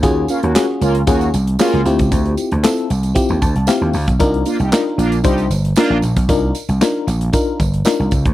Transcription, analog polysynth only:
\new Staff \with { instrumentName = "Analog polysynth" } { \time 4/4 \key d \phrygian \tempo 4 = 115 r8 <bes des' f'>16 <bes des' ges'>16 <bes des' ges'>16 r16 <bes des' f'>8 <bes des' ges'>8 r8 <bes des' f'>8 r8 | r1 | r8 <bes d' f'>16 <g ees' g'>16 <g ees' g'>16 r16 <bes d' f'>8 <g ees' g'>8 r8 <bes d' f'>8 r8 | r1 | }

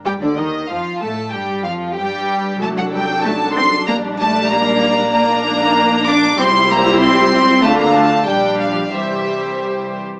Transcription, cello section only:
\new Staff \with { instrumentName = "Cello section" } { \time 2/4 \key g \minor \tempo 4 = 95 g16 d16 ees8 f8 a8 | g8 f8 g4 | a16 fis16 g8 a8 c'8 | bes8 a8 bes4 |
\key c \mixolydian bes4. d'8 | c'8 bes8 c'4 | a16 bes16 a8 g8 f8 | e4. r8 | }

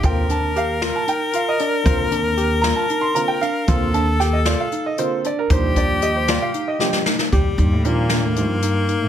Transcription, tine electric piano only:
\new Staff \with { instrumentName = "Tine electric piano" } { \time 7/8 \key ees \lydian \tempo 4 = 115 f'8 d'8 g'8 f'8 ees'8 f'8 d'8 | f'8 d'8 g'8 f'8 ees'8 f'8 d'8 | f'8 d'8 g'8 f'8 ees'8 f'8 d'8 | ees'8 d'8 g'8 f'8 ees'8 g'8 ees'8 |
g'8 ees'8 ees'8 d'8 ees'8 ees'8 ees'8 | }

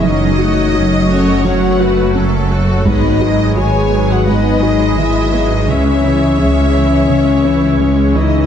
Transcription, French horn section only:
\new Staff \with { instrumentName = "French horn section" } { \time 4/4 \key cis \minor \tempo 4 = 85 dis'4. cis'8 fis'4 r4 | dis'4 gis'8. fis'16 dis'4 e'8. dis'16 | cis'2.~ cis'8 dis'8 | }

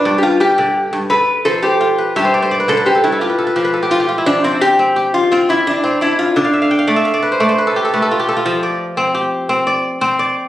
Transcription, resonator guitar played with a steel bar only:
\new Staff \with { instrumentName = "Resonator guitar played with a steel bar" } { \time 12/8 \key f \lydian \tempo 4. = 114 d'16. g'32 f'8 g'4. r8 b'4 a'8 g'4. | g'4 r8 a'8 g'8 e'8 f'2~ f'8 r8 | d'8 c'8 g'4. f'8 f'8 e'8 d'4 e'8 f'8 | d'2. r2. |
r1. | }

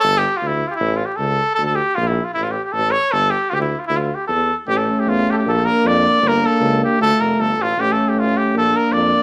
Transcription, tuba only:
\new Staff \with { instrumentName = "Tuba" } { \clef bass \time 2/4 \key a \phrygian \tempo 4 = 156 g,,4 d,4 | a,,4 cis,4 | d,4 bes,,4 | a,,4 a,,4 |
g,,4 d,4 | d,4 e,4 | a,,4 e,4 | bes,,4 f,4 |
g,,4 cis,4 | d,8 f,,8 g,,8 a,,8 | a,,4 a,,4 | bes,,4 f,4 | }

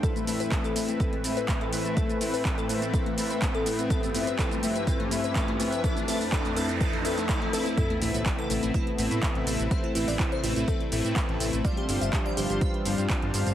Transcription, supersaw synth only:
\new Staff \with { instrumentName = "Supersaw synth" } { \time 4/4 \key a \minor \tempo 4 = 124 <a c' e' b' e''>16 r16 <a c' e' b' e''>8 <a c' e' b' e''>16 r16 <a c' e' b' e''>16 <a c' e' b' e''>16 <a c' e' b' e''>16 r16 <a c' e' b' e''>8 c'16 r16 <a c' e' b' e''>16 <a c' e' b' e''>16 | <a c' e' e''>16 r16 <a c' e' b' e''>8 <c' e' b'>16 r16 <a c' e' b' e''>16 <a c' e' b' e''>16 <a c' e'>16 r16 <a c' e' b' e''>8 <a c' e' e''>16 r16 <a c' e' b' e''>16 <a c' e' b' e''>16 | <a c' e' b' e''>16 r16 <a c' e' b' e''>8 <a c' e' b'>16 r16 <a c' e' b' e''>8 <a c' e' b'>16 r16 <a c' e' b' e''>8 <a c' e' b' e''>16 r16 <a c' e' b' e''>8 | <c' e' b' e''>16 r16 <a c' e' b' e''>16 r16 <a c' e' b' e''>16 r16 <a c' e' b' e''>16 r16 <a c' e' b' e''>16 r16 <a c' e' b' e''>16 r16 <a e' e''>16 r16 <a c' e' b' e''>16 r16 |
<a c' e' b' e''>16 r16 <a c' e' b' e''>8 <a c' e' e''>16 r16 <a c' e' b' e''>16 <a c' e' b' e''>16 r8 <a c' e' b' e''>16 <a c' e' b' e''>16 <a c' e' a''>16 <a c' e' b' e''>16 <a c' e' b' e''>16 r16 | <a c' e' b' e''>16 r16 <a c' e' b' e''>8 <a c' e' b' e''>16 r16 <a c' e' b' e''>16 <a c' e' b' e''>16 e''16 r16 <a c' e' b' e''>16 <a c' e' b' e''>16 <a c' e'>16 <a c' e' b' e''>16 <a c' e' b' e''>16 r16 | <g d' f' c'' f''>16 r16 <g d' f' c'' f''>8 <g d' f'>16 r16 <g d' f' c'' f''>16 <g d' f' c'' f''>16 <g d' f' c'' f''>16 r16 <g d' f' c'' f''>16 <g d' f' c'' f''>16 <g d'>16 <g d' f' c'' f''>16 <g d' f' c'' f''>16 r16 | }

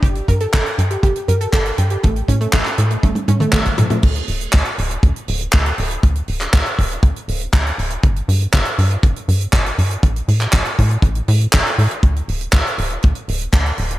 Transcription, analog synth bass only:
\new Staff \with { instrumentName = "Analog synth bass" } { \clef bass \time 4/4 \key a \phrygian \tempo 4 = 120 g,,8 g,8 g,,8 g,8 g,,8 g,8 g,,8 g,8 | a,,8 a,8 a,,8 a,8 a,,8 a,8 a,,8 a,8 | d,8 d,,8 d,8 d,,8 d,8 d,,8 d,8 d,,8 | d,8 d,,8 d,8 d,,8 d,8 d,,8 d,8 d,,8 |
g,,8 g,8 g,,8 g,8 g,,8 g,8 g,,8 g,8 | a,,8 a,8 a,,8 a,8 a,,8 a,8 a,,8 a,8 | d,8 d,,8 d,8 d,,8 d,8 d,,8 d,8 d,,8 | }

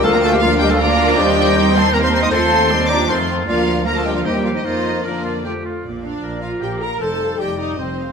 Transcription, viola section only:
\new Staff \with { instrumentName = "Viola section" } { \time 3/4 \key bes \major \tempo 4 = 156 << { bes4 d'2~ | d'4 c'8 bes8 bes4 | a4 c'4 c'4 | bes4 bes4 bes4 |
bes4 bes4 a8 r8 | r8 d'4 f'8 g'8 bes'8 | a'4 g'8 ees'8 c'4 | } \\ { f4 bes4 g8 f8 | ees2 g4 | f8 a8 g8 f8 ees4 | f4 f4 g4 |
f4 f4 f8 r8 | r2. | r2. | } >> }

